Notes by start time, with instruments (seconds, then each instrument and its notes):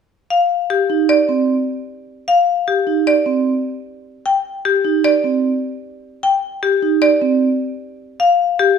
0.30 marimba F5
0.70 marimba G4
0.90 vibraphone D#4
1.09 marimba D5
1.29 vibraphone C4
2.28 marimba F5
2.68 marimba G4
2.87 vibraphone D#4
3.07 marimba D5
3.26 vibraphone C4
4.26 marimba G5
4.65 marimba G4
4.85 vibraphone D#4
5.04 marimba D5
5.24 vibraphone C4
6.23 marimba G5
6.63 marimba G4
6.82 vibraphone D#4
7.02 marimba D5
7.21 vibraphone C4
8.20 marimba F5
8.59 marimba G4